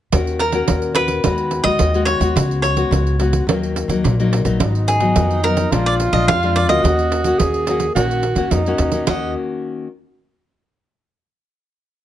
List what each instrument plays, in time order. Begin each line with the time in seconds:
0.12 upright bass D#2, nylon-string guitar D#3 C#4 F#4 A#4, pandeiro
0.27 pandeiro
0.39 cavaquinho A#4, pandeiro
0.52 nylon-string guitar C#4 F#4 A#4, pandeiro
0.68 upright bass D#2, nylon-string guitar A#2, pandeiro
0.82 pandeiro
0.95 nylon-string guitar C#4 F#4 A#4, cavaquinho B4, pandeiro
1.08 pandeiro
1.24 upright bass D#2, nylon-string guitar D#3 G#3 B3 F#4, pandeiro
1.38 pandeiro
1.51 pandeiro
1.64 upright bass D#2, nylon-string guitar G#3 B3 F#4, cavaquinho D#5, pandeiro
1.79 upright bass D#2, nylon-string guitar D#3, pandeiro
1.94 nylon-string guitar G#3 B3 F#4, pandeiro
2.05 cavaquinho C#5, pandeiro
2.20 upright bass D#2, nylon-string guitar G#3 B3 F#4, pandeiro
2.36 upright bass C#2, nylon-string guitar C#3, pandeiro
2.51 pandeiro
2.62 cavaquinho C#5, pandeiro
2.76 nylon-string guitar G#3 B3 F#4, pandeiro
2.91 upright bass C#2, nylon-string guitar G#2, pandeiro
3.07 pandeiro
3.20 nylon-string guitar G#3 B3 F#4, pandeiro
3.33 pandeiro
3.47 upright bass D#2, nylon-string guitar D#3 F#3 A#3 D#4, pandeiro
3.63 pandeiro
3.76 pandeiro
3.88 upright bass D#2, nylon-string guitar F#3 A#3 D#4, pandeiro
4.04 upright bass A#1, nylon-string guitar A#2, pandeiro
4.20 nylon-string guitar F#3 A#3 D#4, pandeiro
4.33 pandeiro
4.44 upright bass A#1, nylon-string guitar F#3 B3 D#4, pandeiro
4.60 upright bass G#1, nylon-string guitar G#2, tenor saxophone D#4, pandeiro
4.75 pandeiro
4.88 cavaquinho G#4, pandeiro
5.00 nylon-string guitar F#3 B3 D#4, pandeiro
5.16 upright bass F2, nylon-string guitar D#3, pandeiro
5.31 pandeiro
5.43 nylon-string guitar F#3 B3 D#4, cavaquinho A#4, pandeiro
5.57 pandeiro
5.71 upright bass A#1, nylon-string guitar A#2 F3 G#3 D4, tenor saxophone F4, pandeiro
5.86 cavaquinho D5, pandeiro
6.00 pandeiro
6.12 upright bass A#1, nylon-string guitar F3 G#3 D4, cavaquinho D#5, pandeiro
6.27 upright bass F2, nylon-string guitar F2, cavaquinho F5, pandeiro
6.43 nylon-string guitar F3 G#3 D4, pandeiro
6.56 cavaquinho D5, pandeiro
6.68 upright bass D2, nylon-string guitar A#3 C#4 F#4, cavaquinho D#5, pandeiro
6.83 upright bass D#2, nylon-string guitar D#3, tenor saxophone F#4, pandeiro
6.99 pandeiro
7.12 pandeiro
7.24 nylon-string guitar A#3 C#4 F#4, pandeiro
7.38 upright bass D#2, nylon-string guitar A#2, tenor saxophone G#4, pandeiro
7.54 pandeiro
7.67 nylon-string guitar A#3 C#4 F#4, pandeiro
7.80 pandeiro
7.95 upright bass A#1, nylon-string guitar D#3 A#3 C#4 F#4, tenor saxophone F#4, pandeiro
8.11 pandeiro
8.23 pandeiro
8.35 upright bass D#2, nylon-string guitar A#3 C#4 F#4, pandeiro
8.51 upright bass F2, nylon-string guitar A#2, tenor saxophone D#4, pandeiro
8.66 nylon-string guitar A#3 C#4 F#4, pandeiro
8.78 upright bass D#2, pandeiro
8.92 nylon-string guitar A#3 C#4 F#4, pandeiro
9.07 upright bass D#2, nylon-string guitar D#3 A#3 C#4 F#4, tenor saxophone F#4, cavaquinho D#5, pandeiro